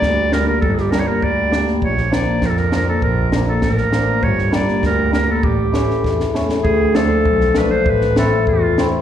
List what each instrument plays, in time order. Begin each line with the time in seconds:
Already playing: hammered dulcimer G3, clarinet D5
0.02 double bass D2, kick, snare
0.32 hammered dulcimer G3 A#3 D4, clarinet A#4, snare
0.48 clarinet A#4
0.61 double bass G1, clarinet A4, kick
0.75 clarinet G4, snare
0.91 hammered dulcimer G3 A#3 D4, clarinet A#4, snare
0.99 clarinet C#5
1.07 clarinet A#4
1.22 double bass D2, clarinet D5, kick
1.50 hammered dulcimer G3 A#3 D4, snare
1.67 snare
1.82 double bass A#1, clarinet C#5, kick
1.98 snare
2.11 hammered dulcimer F3 A#3 D4, clarinet D5, snare
2.42 double bass F2, clarinet A#4, kick, snare
2.50 clarinet A4
2.57 clarinet A#4, snare
2.72 hammered dulcimer F3 A#3 D4, snare
2.76 clarinet A#4
2.89 clarinet A4
3.02 double bass A#1, clarinet A#4, kick
3.32 hammered dulcimer F3 A#3 D4, snare
3.49 clarinet A4
3.62 double bass A1, clarinet A#4, kick, snare
3.77 snare
3.92 hammered dulcimer F3 A#3 D4, snare
4.23 double bass G1, clarinet C#5, kick
4.38 snare
4.51 hammered dulcimer G3 A#3 D4, snare
4.55 clarinet D5
4.68 snare
4.83 double bass D2, clarinet A#4, kick, snare
5.11 hammered dulcimer G3 A#3 D4, clarinet A#4, snare
5.31 clarinet A4
5.43 double bass A1, clarinet G4, kick
5.72 hammered dulcimer E3 A3 C#4, snare
5.90 snare
6.04 double bass E2, kick, snare
6.20 snare
6.34 hammered dulcimer E3 A3 C#4, snare
6.49 snare
6.63 double bass D2, clarinet G#4, kick
6.95 hammered dulcimer F3 A3 D4, clarinet A4, snare
7.25 double bass B1, kick
7.41 snare
7.55 hammered dulcimer F3 A3 D4, clarinet B4, snare
7.70 clarinet C5
7.86 double bass A1, clarinet B4, kick
8.01 snare
8.16 hammered dulcimer A3 C4 E4, clarinet A4, snare
8.47 double bass E2, clarinet F4, kick
8.78 hammered dulcimer A3 C4 E4, snare